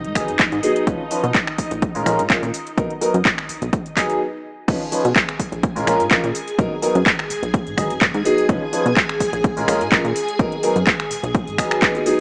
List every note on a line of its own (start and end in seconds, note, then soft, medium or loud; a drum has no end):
0.00 4.20 D#4 medium
0.00 4.20 D#5 medium
0.04 0.13 G#2 loud
0.04 closed hi-hat soft
0.15 0.30 G#1 loud
0.15 0.28 F#3 medium
0.15 0.28 B3 medium
0.15 0.28 D#4 medium
0.15 0.28 G#4 loud
0.15 finger snap medium
0.15 kick medium
0.15 open hi-hat loud
0.15 shaker medium
0.28 0.37 F#2 medium
0.28 closed hi-hat medium
0.28 shaker soft
0.39 0.49 G#1 medium
0.39 kick loud
0.39 clap loud
0.39 closed hi-hat medium
0.39 shaker soft
0.52 0.61 G#2 medium
0.52 closed hi-hat soft
0.52 shaker soft
0.63 0.82 F#3 medium
0.63 0.82 B3 medium
0.63 0.82 D#4 medium
0.63 0.82 G#4 medium
0.63 open hi-hat loud
0.63 shaker medium
0.76 closed hi-hat soft
0.76 shaker soft
0.87 0.97 C#2 loud
0.87 0.99 F3 medium
0.87 0.99 C#4 medium
0.87 0.99 D#4 medium
0.87 1.00 B4 loud
0.87 kick loud
0.87 closed hi-hat medium
0.87 shaker soft
1.11 1.23 F3 medium
1.11 1.23 C#4 medium
1.11 1.23 D#4 medium
1.11 1.23 B4 medium
1.11 open hi-hat loud
1.11 shaker medium
1.24 1.32 B2 medium
1.24 closed hi-hat medium
1.24 shaker soft
1.35 kick loud
1.35 clap loud
1.35 closed hi-hat medium
1.35 shaker soft
1.47 finger snap medium
1.47 closed hi-hat soft
1.58 1.69 A#1 soft
1.58 kick medium
1.58 open hi-hat loud
1.58 shaker medium
1.71 1.96 A#1 loud
1.71 closed hi-hat medium
1.71 shaker soft
1.82 kick loud
1.82 closed hi-hat medium
1.82 shaker soft
1.95 2.04 A#2 loud
1.95 2.03 G#3 medium
1.95 2.03 C#4 medium
1.95 2.04 F4 medium
1.95 2.04 A#4 loud
1.95 open hi-hat medium
2.06 2.20 A#1 medium
2.06 2.18 G#3 loud
2.06 2.18 C#4 medium
2.06 2.19 F4 medium
2.06 2.19 A#4 loud
2.06 finger snap medium
2.06 open hi-hat loud
2.06 shaker medium
2.19 2.27 G#2 medium
2.19 closed hi-hat medium
2.19 shaker soft
2.30 2.40 A#1 medium
2.30 2.42 G#3 medium
2.30 2.42 C#4 medium
2.30 2.42 F4 medium
2.30 2.42 A#4 loud
2.30 kick loud
2.30 clap loud
2.30 closed hi-hat medium
2.30 shaker soft
2.43 2.51 A#2 medium
2.43 closed hi-hat soft
2.43 shaker soft
2.54 open hi-hat loud
2.54 shaker medium
2.67 closed hi-hat soft
2.67 shaker soft
2.77 2.87 B1 loud
2.77 2.90 F#3 medium
2.77 2.90 B3 medium
2.77 2.90 D#4 medium
2.77 2.90 A#4 loud
2.77 kick loud
2.77 closed hi-hat medium
2.77 shaker soft
2.90 closed hi-hat soft
3.01 3.13 F#3 medium
3.01 3.14 B3 medium
3.01 3.14 D#4 medium
3.01 3.14 A#4 loud
3.01 open hi-hat loud
3.01 shaker medium
3.14 3.23 F#2 medium
3.14 closed hi-hat medium
3.14 shaker soft
3.25 kick loud
3.25 clap loud
3.25 closed hi-hat medium
3.25 shaker soft
3.38 finger snap medium
3.38 closed hi-hat soft
3.49 3.59 B1 soft
3.49 open hi-hat loud
3.49 shaker medium
3.62 3.70 B1 medium
3.62 closed hi-hat medium
3.62 shaker soft
3.73 kick loud
3.73 closed hi-hat medium
3.73 shaker soft
3.86 closed hi-hat soft
3.86 shaker soft
3.96 4.18 F#3 loud
3.96 4.18 B3 medium
3.96 4.18 D#4 medium
3.96 4.18 G#4 loud
3.96 finger snap medium
3.96 kick medium
3.96 clap medium
3.96 open hi-hat loud
3.96 shaker medium
4.10 closed hi-hat medium
4.10 shaker soft
4.68 4.78 C#2 medium
4.68 4.80 F3 medium
4.68 4.80 C#4 medium
4.68 4.80 D#4 medium
4.68 12.20 G#4 medium
4.68 4.81 B4 medium
4.68 12.20 G#5 medium
4.68 kick loud
4.68 closed hi-hat medium
4.68 crash loud
4.68 shaker soft
4.92 5.04 F3 medium
4.92 5.04 C#4 medium
4.92 5.04 D#4 medium
4.92 5.04 B4 medium
4.92 open hi-hat loud
4.92 shaker medium
5.05 5.13 B2 medium
5.05 closed hi-hat medium
5.05 shaker soft
5.16 kick loud
5.16 clap loud
5.16 closed hi-hat medium
5.16 shaker soft
5.29 finger snap medium
5.29 closed hi-hat soft
5.40 5.50 A#1 soft
5.40 kick medium
5.40 open hi-hat loud
5.40 shaker medium
5.52 5.78 A#1 medium
5.52 closed hi-hat medium
5.52 shaker soft
5.63 kick loud
5.63 closed hi-hat medium
5.63 shaker soft
5.76 5.85 A#2 loud
5.76 5.84 G#3 loud
5.76 5.84 C#4 medium
5.76 5.84 F4 medium
5.76 5.85 A#4 loud
5.76 open hi-hat medium
5.76 shaker soft
5.87 6.01 A#1 medium
5.87 5.99 G#3 loud
5.87 5.99 C#4 medium
5.87 5.99 F4 medium
5.87 6.00 A#4 loud
5.87 finger snap medium
5.87 open hi-hat loud
5.87 shaker medium
6.00 6.08 G#2 medium
6.00 closed hi-hat medium
6.00 shaker soft
6.11 6.21 A#1 medium
6.11 6.23 G#3 medium
6.11 6.23 C#4 medium
6.11 6.23 F4 medium
6.11 6.23 A#4 loud
6.11 kick loud
6.11 clap loud
6.11 closed hi-hat medium
6.11 shaker soft
6.24 6.32 A#2 medium
6.24 closed hi-hat soft
6.24 shaker soft
6.35 open hi-hat loud
6.35 shaker medium
6.48 closed hi-hat medium
6.48 shaker soft
6.58 6.68 B1 loud
6.58 6.71 F#3 loud
6.58 6.71 B3 medium
6.58 6.71 D#4 medium
6.58 6.71 A#4 loud
6.58 kick loud
6.58 closed hi-hat medium
6.58 shaker soft
6.82 6.94 F#3 medium
6.82 6.95 B3 medium
6.82 6.95 D#4 medium
6.82 6.95 A#4 loud
6.82 open hi-hat loud
6.82 shaker medium
6.95 7.04 F#2 medium
6.95 closed hi-hat medium
6.95 shaker soft
7.06 kick loud
7.06 clap loud
7.06 closed hi-hat medium
7.06 shaker soft
7.19 finger snap medium
7.19 closed hi-hat soft
7.30 7.40 B1 soft
7.30 open hi-hat loud
7.30 shaker medium
7.43 7.68 B1 medium
7.43 closed hi-hat medium
7.43 shaker soft
7.54 kick loud
7.54 closed hi-hat medium
7.54 shaker soft
7.67 7.75 G#2 loud
7.67 closed hi-hat soft
7.67 shaker soft
7.77 7.92 G#1 loud
7.77 7.90 F#3 medium
7.77 7.90 B3 medium
7.77 7.90 D#4 medium
7.77 7.90 G#4 loud
7.77 finger snap medium
7.77 kick medium
7.77 open hi-hat loud
7.77 shaker medium
7.90 7.99 F#2 medium
7.90 closed hi-hat medium
7.90 shaker soft
8.01 8.11 G#1 medium
8.01 kick loud
8.01 clap loud
8.01 closed hi-hat medium
8.01 shaker soft
8.14 8.23 G#2 medium
8.14 closed hi-hat soft
8.14 shaker soft
8.25 8.44 F#3 medium
8.25 8.44 B3 medium
8.25 8.44 D#4 medium
8.25 8.44 G#4 loud
8.25 open hi-hat loud
8.25 shaker medium
8.38 closed hi-hat medium
8.38 shaker soft
8.49 8.59 C#2 loud
8.49 8.61 F3 medium
8.49 8.61 C#4 medium
8.49 8.61 D#4 medium
8.49 8.62 B4 medium
8.49 kick loud
8.49 closed hi-hat medium
8.49 shaker soft
8.72 8.85 F3 medium
8.72 8.85 C#4 medium
8.72 8.85 D#4 medium
8.72 8.85 B4 medium
8.72 open hi-hat loud
8.72 shaker medium
8.86 8.94 B2 medium
8.86 closed hi-hat soft
8.86 shaker soft
8.97 kick loud
8.97 clap loud
8.97 closed hi-hat medium
8.97 shaker soft
9.09 finger snap medium
9.09 closed hi-hat soft
9.20 9.31 A#1 soft
9.20 kick medium
9.20 open hi-hat loud
9.20 shaker medium
9.33 9.58 A#1 medium
9.33 closed hi-hat medium
9.33 shaker soft
9.44 kick loud
9.44 closed hi-hat medium
9.44 shaker soft
9.57 9.65 A#2 loud
9.57 9.65 G#3 loud
9.57 9.65 C#4 medium
9.57 9.66 F4 medium
9.57 9.66 A#4 loud
9.57 open hi-hat medium
9.57 shaker soft
9.68 9.82 A#1 loud
9.68 9.80 G#3 loud
9.68 9.80 C#4 medium
9.68 9.80 F4 medium
9.68 9.81 A#4 loud
9.68 finger snap medium
9.68 open hi-hat loud
9.68 shaker medium
9.80 9.89 G#2 medium
9.80 closed hi-hat medium
9.80 shaker soft
9.92 10.02 A#1 medium
9.92 10.04 G#3 medium
9.92 10.04 C#4 medium
9.92 10.04 F4 medium
9.92 10.04 A#4 loud
9.92 kick loud
9.92 clap loud
9.92 closed hi-hat medium
9.92 shaker soft
10.04 10.13 A#2 loud
10.04 closed hi-hat soft
10.04 shaker soft
10.16 open hi-hat loud
10.16 shaker medium
10.28 closed hi-hat soft
10.28 shaker soft
10.39 10.49 B1 loud
10.39 10.52 F#3 loud
10.39 10.52 B3 medium
10.39 10.52 D#4 medium
10.39 10.52 A#4 loud
10.39 kick loud
10.39 closed hi-hat medium
10.39 shaker soft
10.52 closed hi-hat soft
10.63 10.75 F#3 medium
10.63 10.76 B3 medium
10.63 10.76 D#4 medium
10.63 10.76 A#4 loud
10.63 open hi-hat loud
10.63 shaker medium
10.76 10.85 F#2 medium
10.76 closed hi-hat medium
10.76 shaker soft
10.87 kick loud
10.87 clap loud
10.87 closed hi-hat medium
10.87 shaker soft
11.00 finger snap medium
11.00 closed hi-hat soft
11.11 11.21 B1 soft
11.11 open hi-hat loud
11.11 shaker medium
11.23 11.49 B1 medium
11.23 closed hi-hat medium
11.23 shaker soft
11.35 kick loud
11.35 closed hi-hat medium
11.35 shaker soft
11.47 11.60 G#2 loud
11.47 closed hi-hat soft
11.47 shaker soft
11.58 11.68 G#1 loud
11.58 11.79 F#3 loud
11.58 11.80 B3 medium
11.58 11.80 D#4 medium
11.58 11.80 G#4 loud
11.58 finger snap medium
11.58 kick medium
11.58 open hi-hat loud
11.58 shaker medium
11.71 finger snap medium
11.71 closed hi-hat medium
11.71 shaker soft
11.82 11.93 F#3 medium
11.82 11.93 B3 medium
11.82 11.93 D#4 medium
11.82 kick loud
11.82 clap loud
11.82 closed hi-hat medium
11.82 shaker soft
11.95 12.03 F#3 medium
11.95 12.03 B3 medium
11.95 12.04 D#4 medium
11.95 12.04 G#4 medium
11.95 closed hi-hat soft
11.95 shaker soft
12.06 12.20 F#3 medium
12.06 12.20 B3 medium
12.06 12.20 D#4 medium
12.06 12.20 G#4 medium
12.06 open hi-hat loud
12.06 shaker medium